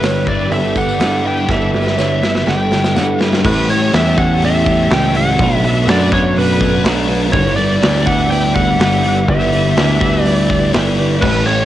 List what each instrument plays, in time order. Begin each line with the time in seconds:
Already playing: picked electric bass G1, clean electric guitar G3, distorted electric guitar B3, string machine G4 D5 E5 B5, lead electric guitar B4
0.02 distorted electric guitar G2 D3 G3, clean electric guitar B3 E4 B4 D5, twelve-string acoustic guitar C#5, snare, open hi-hat, tambourine
0.27 distorted electric guitar D3 G3, twelve-string acoustic guitar B4, lead electric guitar D5, kick
0.40 tambourine
0.50 picked electric bass G1, distorted electric guitar G2 D3 G3, clean electric guitar G3 B3 E4 B4 D5, twelve-string acoustic guitar A4, lead electric guitar E5, open hi-hat
0.65 tambourine
0.75 distorted electric guitar D3 G3, twelve-string acoustic guitar G4, lead electric guitar F#5, kick, tambourine
0.89 tambourine
0.99 distorted electric guitar G2 D3 G3, picked electric bass G2, clean electric guitar B3 E4 B4 D5, twelve-string acoustic guitar A4, snare, open hi-hat, tambourine
1.24 distorted electric guitar D3 G3, twelve-string acoustic guitar B4, lead electric guitar G5
1.37 tambourine
1.47 picked electric bass G1, distorted electric guitar G2 D3 G3, clean electric guitar G3 B3 E4 B4, twelve-string acoustic guitar A4, lead electric guitar E5, kick, snare, tambourine
1.52 clean electric guitar D5
1.61 tambourine
1.72 distorted electric guitar D3 G3, clean electric guitar E4 B4 D5, twelve-string acoustic guitar B4, snare, tambourine
1.86 snare, tambourine
1.96 distorted electric guitar G2 D3 G3, clean electric guitar B3 E4 B4, twelve-string acoustic guitar C#5, snare, tambourine
2.01 clean electric guitar D5
2.21 distorted electric guitar D3 G3, twelve-string acoustic guitar B4, snare, tambourine
2.35 snare, tambourine
2.45 picked electric bass G1, distorted electric guitar G2 D3 G3, clean electric guitar G3 B3 E4, twelve-string acoustic guitar A4, snare, tambourine
2.49 clean electric guitar B4 D5, lead electric guitar G5
2.59 tambourine
2.70 distorted electric guitar D3 G3, twelve-string acoustic guitar G4, snare, tambourine
2.84 snare, tambourine
2.95 distorted electric guitar G2 D3 G3, picked electric bass G2, clean electric guitar B3 E4 B4 D5, twelve-string acoustic guitar A4, lead electric guitar F#5, snare, tambourine
3.19 distorted electric guitar D3 G3, twelve-string acoustic guitar B4, snare, tambourine
3.33 snare, tambourine
3.43 distorted electric guitar A2 E3 A3, clean electric guitar A2 E3 G3 C#4 G4, picked electric bass A2, string machine G4 C#5 E5 A5, lead electric guitar B4, kick, crash
3.68 distorted electric guitar E3 A3, clean electric guitar C#4 G4, lead electric guitar C#5, open hi-hat
3.72 clean electric guitar G3
3.91 picked electric bass E2, distorted electric guitar A2 E3 A3, clean electric guitar E3 G3 C#4, lead electric guitar E5, snare, open hi-hat
3.96 clean electric guitar G4
4.17 distorted electric guitar E3 A3, clean electric guitar G3 C#4 G4, lead electric guitar F#5, kick, open hi-hat
4.42 clean electric guitar A2 E3 G3 C#4 G4, lead electric guitar E5, open hi-hat
4.66 clean electric guitar G3 C#4 G4, kick
4.89 picked electric bass C#2, distorted electric guitar A2 E3 A3, clean electric guitar E3 G3, lead electric guitar G5, snare, open hi-hat
4.93 clean electric guitar C#4 G4
5.12 distorted electric guitar E3 A3, clean electric guitar G4, open hi-hat
5.17 clean electric guitar G3 C#4, lead electric guitar F#5
5.37 picked electric bass B1, distorted electric guitar B2 F#3 B3, clean electric guitar B2 F#3, string machine A4 D5 F#5 B5, kick, open hi-hat
5.42 clean electric guitar A3 D4 F#4 B4
5.62 distorted electric guitar F#3 B3, clean electric guitar B4, lead electric guitar E5, open hi-hat
5.66 clean electric guitar A3 D4 F#4
5.86 picked electric bass F#2, distorted electric guitar B2 F#3 B3, clean electric guitar A3 D4 F#4, lead electric guitar D5, snare, open hi-hat
5.91 clean electric guitar B4
6.11 distorted electric guitar F#3 B3, clean electric guitar A3 D4 F#4 B4, lead electric guitar C#5, kick, open hi-hat
6.36 clean electric guitar B2 F#3 A3 D4 F#4 B4, lead electric guitar B4, open hi-hat
6.60 clean electric guitar A3 D4 F#4 B4, kick, open hi-hat
6.84 picked electric bass B1, distorted electric guitar B2 F#3 B3, clean electric guitar A3 D4 F#4 B4, snare, open hi-hat
7.08 distorted electric guitar F#3 B3, clean electric guitar A3 D4 F#4 B4, open hi-hat
7.33 picked electric bass G1, distorted electric guitar G2 D3 G3, clean electric guitar G3 B3 E4 B4 D5, string machine G4 E5, lead electric guitar C#5, kick, open hi-hat
7.57 distorted electric guitar G3, clean electric guitar E4 B4 D5, lead electric guitar D5, open hi-hat
7.61 distorted electric guitar D3
7.82 picked electric bass D2, distorted electric guitar G2 D3 G3, clean electric guitar B3 E4 B4 D5, snare, open hi-hat
8.06 distorted electric guitar D3 G3, clean electric guitar E4 B4 D5, lead electric guitar F#5, kick, open hi-hat
8.30 clean electric guitar G3 B3 E4 B4 D5, lead electric guitar G5, open hi-hat
8.55 clean electric guitar E4 B4 D5, lead electric guitar F#5, kick, open hi-hat
8.79 picked electric bass G1, distorted electric guitar G2 D3 G3, clean electric guitar B3 E4 B4, snare, open hi-hat
8.83 clean electric guitar D5
9.03 distorted electric guitar D3 G3, clean electric guitar E4 B4 D5, open hi-hat
9.28 picked electric bass G1, distorted electric guitar G2 D3 G3, clean electric guitar G3 B3 E4 B4 D5, lead electric guitar E5, kick, open hi-hat
9.52 distorted electric guitar D3 G3, clean electric guitar E4 B4 D5, open hi-hat
9.76 picked electric bass D2, distorted electric guitar G2 D3 G3, clean electric guitar B3 E4 B4, snare, open hi-hat
9.80 clean electric guitar D5
10.00 distorted electric guitar D3 G3, clean electric guitar B4 D5, kick, open hi-hat
10.04 clean electric guitar E4
10.24 clean electric guitar G3 B3 E4 B4 D5, lead electric guitar D5, open hi-hat
10.49 clean electric guitar E4 B4 D5, kick, open hi-hat
10.72 picked electric bass G1, distorted electric guitar G2 D3 G3, clean electric guitar B3 E4 B4, snare, open hi-hat
10.76 clean electric guitar D5
10.97 distorted electric guitar D3 G3, clean electric guitar B4 D5, open hi-hat
11.01 clean electric guitar E4
11.21 picked electric bass A1, distorted electric guitar A2 E3 A3, clean electric guitar A2 E3 G3, string machine A4 G5 C#6, lead electric guitar B4, kick, crash
11.25 clean electric guitar C#4 G4
11.46 distorted electric guitar E3 A3, clean electric guitar G3 C#4 G4, lead electric guitar C#5, open hi-hat